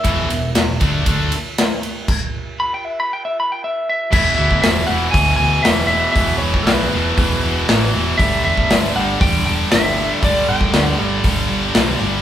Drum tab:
CC |----------------|x---------------|x---------------|----------------|
RD |x-x-x-x-x-x-x-x-|----------------|----------------|----------------|
HH |----------------|----------------|----o---o---o---|o---o---o---o---|
SD |----o-------o---|----------------|----o-------o---|----o-------o---|
BD |o-----o-o-------|o---------------|o--o----o-------|o--o----o-------|

CC |----------------|----------------|
RD |----------------|----------------|
HH |o---o---o---o---|o---o---o---o---|
SD |----o-------o---|----o-------o---|
BD |o--o----o-------|o--o----o-------|